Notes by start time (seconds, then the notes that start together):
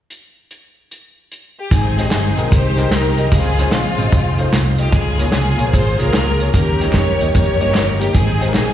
0.10 closed hi-hat
0.50 closed hi-hat
0.91 closed hi-hat
1.31 closed hi-hat
1.60 G4
1.71 G#1 G#2 D#3 G#3 C4 D#4 G#4 G5, kick, closed hi-hat, tambourine
1.97 G#3 D#4 G4 C5, snare, closed hi-hat, tambourine
2.03 G#3 D#4 G4 D#5
2.10 G1 C4 D#4 G#4, snare, clap, closed hi-hat, tambourine
2.36 A#1 G#3 D#4 G4 A#4, closed hi-hat, tambourine
2.44 G#3 D#4 G4 A#4
2.51 C2 D#4 G4 C5, kick, closed hi-hat, tambourine
2.77 G#3 D#4 G4 A#4, snare, closed hi-hat, tambourine
2.91 C2 D#4 G4 A#4, snare, clap, closed hi-hat, tambourine
3.17 G#3 D#4 G4 D#5, closed hi-hat, tambourine
3.31 C#2 C#3 F3 C4 F4 G#4, kick, closed hi-hat, tambourine
3.59 G#3 C#4 F4 C5, snare, closed hi-hat, tambourine
3.64 G#3 C#4 F4 C5
3.72 A#1 G#3 C4 F4, snare, clap, closed hi-hat, tambourine
3.97 G#1 G#3 C#4 F4 C5, closed hi-hat, tambourine
4.05 G#3 C#4 F4 D#5
4.12 F1 F3 C4 D#4 G4, kick, closed hi-hat, tambourine
4.17 C5
4.38 A3 D#4 F4 C5, closed hi-hat, tambourine
4.52 C2, snare, clap, closed hi-hat, tambourine
4.77 A3 D#4 F4 G4 D#5, closed hi-hat, tambourine
4.92 C#2 C#3 F3 A#3 C#4 F4 G4 G#4, kick, closed hi-hat, tambourine
4.98 G#4
5.18 A#3 F4 G#4 C#5, snare, closed hi-hat, tambourine
5.24 A#3 F4 G#4 C#5
5.32 C2 F4 G#4, snare, clap, closed hi-hat, tambourine
5.57 A#1 A#3 F4 G#4 C#5, closed hi-hat, tambourine
5.65 A#3 F4 G#4 C5
5.73 G#1 F4 G#4 C5, kick, closed hi-hat, tambourine
5.97 C2 A#3 F4 G#4 A#4 C#5, snare, closed hi-hat, tambourine
6.13 C#2, snare, clap, closed hi-hat, tambourine
6.38 A#3 F4 G#4 C#5, closed hi-hat, tambourine
6.54 D#2 D#3 A#3 C#4 F4 G4 A#4, kick, closed hi-hat, tambourine
6.58 G4
6.79 A#3 D#4 G4 C#5, snare, closed hi-hat, tambourine
6.86 A#3 D#4 G4 C#5
6.93 F2 G4 A#4 C#5, kick, snare, clap, closed hi-hat, tambourine
7.19 D#2 A#3 D#4 G4 D#5, closed hi-hat, tambourine
7.26 A#3 D#4 G4 C#5
7.34 F2 G4 A#4 C#5, kick, closed hi-hat, tambourine
7.59 G2 A#3 D#4 G4 D#5, closed hi-hat, tambourine
7.75 G1, snare, clap, closed hi-hat, tambourine
7.99 A#3 D#4 G4 A#4, closed hi-hat, tambourine
8.13 G#1 G#2 D#3 G#3 C4 D#4 G#4 G5, kick, closed hi-hat, tambourine
8.39 G#3 D#4 G4 C5, snare, closed hi-hat, tambourine
8.46 G#3 D#4 G4 A#4
8.54 A#1 C4 D#4 G#4, snare, clap, closed hi-hat, tambourine